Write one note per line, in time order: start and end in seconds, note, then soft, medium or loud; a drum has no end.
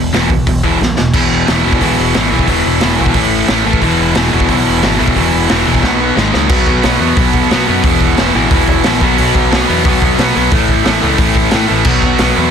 0.00 0.11 E1 medium
0.00 0.11 E2 medium
0.00 0.11 B2 medium
0.13 0.28 E1 medium
0.13 0.29 E2 medium
0.13 0.29 B2 medium
0.13 0.29 E3 medium
0.13 snare loud
0.13 open hi-hat medium
0.30 0.44 C#2 medium
0.30 0.45 E2 medium
0.30 0.45 B2 medium
0.30 kick medium
0.47 0.61 E1 loud
0.47 0.62 E2 medium
0.47 0.62 B2 medium
0.47 kick loud
0.47 open hi-hat medium
0.63 0.78 E1 medium
0.63 0.79 E2 medium
0.63 0.79 B2 medium
0.63 0.79 E3 medium
0.63 kick medium
0.80 0.95 B1 medium
0.80 0.95 E2 medium
0.80 0.95 B2 medium
0.80 snare medium
0.97 1.12 E1 medium
0.97 1.12 E2 medium
0.97 1.12 B2 medium
0.97 snare medium
1.14 1.28 E1 medium
1.14 1.46 E2 medium
1.14 1.46 B2 medium
1.14 1.48 E3 medium
1.14 kick loud
1.14 crash loud
1.31 1.44 E1 medium
1.47 1.61 E1 medium
1.47 1.64 E2 medium
1.47 1.63 B2 medium
1.47 1.64 E3 loud
1.47 snare loud
1.47 open hi-hat medium
1.65 1.78 E1 medium
1.65 1.80 E2 medium
1.65 1.81 B2 medium
1.65 1.82 E3 medium
1.73 kick medium
1.81 1.95 B1 medium
1.81 2.13 E2 medium
1.81 2.13 B2 loud
1.81 2.15 E3 medium
1.81 kick loud
1.81 open hi-hat medium
1.99 2.12 E1 loud
2.14 2.29 G#1 loud
2.14 2.31 E2 medium
2.14 2.30 B2 medium
2.14 2.31 E3 loud
2.14 snare loud
2.14 open hi-hat medium
2.31 2.45 B1 medium
2.31 2.47 E2 medium
2.31 2.48 B2 medium
2.31 2.49 E3 medium
2.39 kick medium
2.47 2.61 E1 medium
2.47 2.81 E2 medium
2.47 2.81 B2 loud
2.47 2.82 E3 loud
2.47 kick loud
2.47 open hi-hat medium
2.66 2.79 E1 medium
2.81 2.96 E1 medium
2.81 2.98 E2 medium
2.81 2.97 B2 medium
2.81 2.98 E3 medium
2.81 snare loud
2.81 open hi-hat medium
2.99 3.13 B1 medium
2.99 3.14 E2 medium
2.99 3.14 B2 medium
2.99 3.15 E3 medium
3.06 kick medium
3.14 3.42 A1 loud
3.14 3.48 A2 medium
3.14 3.49 E3 loud
3.14 3.48 A3 loud
3.14 kick loud
3.14 open hi-hat medium
3.48 3.63 A1 medium
3.48 3.64 A2 loud
3.48 3.65 E3 loud
3.48 3.64 A3 loud
3.48 snare loud
3.48 open hi-hat medium
3.65 3.79 A1 medium
3.65 3.81 A2 medium
3.65 3.83 E3 medium
3.65 3.81 A3 medium
3.73 kick medium
3.82 3.96 E1 medium
3.82 4.14 E2 medium
3.82 4.15 B2 medium
3.82 4.16 E3 loud
3.82 kick medium
3.82 open hi-hat medium
3.99 4.13 E1 medium
4.15 4.29 E1 medium
4.15 4.32 E2 medium
4.15 4.31 B2 medium
4.15 4.31 E3 medium
4.15 snare loud
4.15 open hi-hat medium
4.32 4.46 E1 loud
4.32 4.48 E2 medium
4.32 4.49 B2 medium
4.32 4.49 E3 medium
4.40 kick medium
4.49 4.63 B1 loud
4.49 4.81 E2 medium
4.49 4.82 B2 medium
4.49 4.81 E3 loud
4.49 kick loud
4.49 open hi-hat medium
4.68 4.80 E1 medium
4.82 4.97 G#1 loud
4.82 4.98 E2 medium
4.82 4.98 B2 medium
4.82 4.97 E3 medium
4.82 snare loud
4.82 open hi-hat medium
4.99 5.13 B1 medium
4.99 5.14 E2 medium
4.99 5.15 B2 medium
4.99 5.15 E3 medium
5.08 kick medium
5.15 5.30 E1 loud
5.15 5.48 E2 medium
5.15 5.49 B2 loud
5.15 5.49 E3 loud
5.15 kick medium
5.15 open hi-hat medium
5.34 5.47 E1 loud
5.49 5.63 E1 medium
5.49 5.66 E2 medium
5.49 5.65 B2 medium
5.49 5.64 E3 medium
5.49 snare loud
5.49 open hi-hat medium
5.65 5.83 E1 loud
5.65 5.83 E2 medium
5.65 5.81 B2 loud
5.65 5.82 E3 loud
5.75 kick medium
5.82 6.10 B1 loud
5.82 6.15 B2 loud
5.82 6.15 F#3 loud
5.82 6.15 B3 loud
5.82 kick loud
5.82 snare medium
6.16 6.30 G#1 medium
6.16 6.32 G#2 loud
6.16 6.31 D#3 loud
6.16 6.31 G#3 loud
6.16 snare medium
6.32 6.50 C#2 medium
6.32 6.49 G#2 medium
6.32 6.49 D#3 medium
6.32 6.49 G#3 loud
6.32 snare medium
6.49 6.62 B1 medium
6.49 6.82 B2 loud
6.49 6.83 F#3 medium
6.49 6.84 B3 medium
6.49 kick loud
6.49 crash loud
6.66 6.79 B1 medium
6.66 kick medium
6.83 6.96 B1 loud
6.83 7.00 B2 medium
6.83 7.00 F#3 medium
6.83 7.00 B3 medium
6.83 snare loud
6.83 open hi-hat medium
7.00 7.12 E2 loud
7.00 7.16 B2 medium
7.00 7.17 F#3 medium
7.00 7.18 B3 loud
7.17 7.29 B1 loud
7.17 7.49 B2 medium
7.17 7.50 F#3 medium
7.17 7.51 B3 loud
7.17 kick loud
7.17 open hi-hat medium
7.34 7.46 B1 medium
7.34 kick medium
7.51 7.68 B2 medium
7.51 7.64 B2 medium
7.51 7.67 F#3 loud
7.51 7.67 B3 medium
7.51 snare loud
7.51 open hi-hat medium
7.68 7.80 F#2 medium
7.68 7.84 B2 medium
7.68 7.84 F#3 medium
7.68 9.03 B3 medium
7.83 7.96 E1 loud
7.83 8.16 E2 loud
7.83 8.17 B2 loud
7.83 8.17 E3 medium
7.83 kick loud
7.83 open hi-hat medium
8.00 8.13 E1 medium
8.00 kick medium
8.17 8.30 E1 loud
8.17 8.35 E2 medium
8.17 8.34 B2 medium
8.17 8.34 E3 medium
8.17 snare loud
8.17 open hi-hat medium
8.35 8.47 A1 medium
8.35 8.50 E2 medium
8.35 8.50 B2 medium
8.35 8.51 E3 loud
8.51 8.63 E1 medium
8.51 8.85 E2 loud
8.51 8.85 B2 medium
8.51 8.86 E3 medium
8.51 kick loud
8.51 open hi-hat medium
8.68 8.80 E1 loud
8.68 kick medium
8.84 9.02 A#1 loud
8.84 9.01 E2 medium
8.84 9.01 B2 medium
8.84 9.02 E3 medium
8.84 snare loud
8.84 open hi-hat medium
9.01 9.14 B1 medium
9.01 9.18 B2 medium
9.01 9.18 F#3 loud
9.01 9.17 B3 medium
9.01 kick loud
9.18 9.31 B1 loud
9.18 9.52 B2 medium
9.18 9.51 F#3 medium
9.18 9.50 B3 loud
9.18 open hi-hat medium
9.35 9.47 B1 medium
9.35 kick medium
9.52 9.64 B1 medium
9.52 9.68 B2 medium
9.52 9.68 F#3 medium
9.52 9.68 B3 loud
9.52 snare loud
9.52 open hi-hat medium
9.69 9.81 E2 medium
9.69 9.84 B2 medium
9.69 9.84 F#3 medium
9.69 9.83 B3 medium
9.84 9.98 B1 loud
9.84 10.19 B2 medium
9.84 10.18 F#3 loud
9.84 10.17 B3 loud
9.84 kick loud
9.84 open hi-hat medium
10.02 10.14 B1 medium
10.02 kick loud
10.18 10.31 B2 medium
10.18 10.35 B2 medium
10.18 10.35 F#3 medium
10.18 10.36 B3 loud
10.18 snare loud
10.18 open hi-hat medium
10.36 10.48 B1 medium
10.36 10.51 B2 medium
10.36 10.52 F#3 medium
10.36 10.52 B3 medium
10.51 10.64 A1 medium
10.51 10.83 A2 medium
10.51 10.85 E3 medium
10.51 10.85 A3 loud
10.51 kick loud
10.51 open hi-hat medium
10.68 10.81 A1 loud
10.68 kick medium
10.85 10.98 A1 medium
10.85 11.01 A2 medium
10.85 11.02 E3 medium
10.85 11.01 A3 loud
10.85 snare loud
10.85 open hi-hat medium
11.02 11.15 C#2 loud
11.02 11.17 A2 medium
11.02 11.17 E3 medium
11.02 11.18 A3 loud
11.18 11.31 A1 medium
11.18 11.50 A2 loud
11.18 11.50 E3 medium
11.18 11.51 A3 loud
11.18 kick loud
11.18 open hi-hat medium
11.35 11.48 A1 medium
11.35 kick medium
11.51 11.68 A2 medium
11.51 11.65 A2 loud
11.51 11.67 E3 loud
11.51 11.67 A3 medium
11.51 snare loud
11.51 open hi-hat medium
11.68 11.82 A1 medium
11.68 11.84 A2 medium
11.68 11.85 E3 medium
11.68 11.85 A3 medium
11.84 11.98 B1 loud
11.84 12.18 B2 loud
11.84 12.19 F#3 loud
11.84 12.20 B3 medium
11.84 kick loud
11.84 crash loud
12.02 12.15 B1 loud
12.02 kick medium
12.18 12.33 B1 medium
12.18 12.36 B2 medium
12.18 12.36 F#3 medium
12.18 12.36 B3 loud
12.18 snare loud
12.18 open hi-hat medium
12.36 12.49 E2 loud
12.36 12.51 B2 medium
12.36 12.51 F#3 loud
12.36 12.51 B3 medium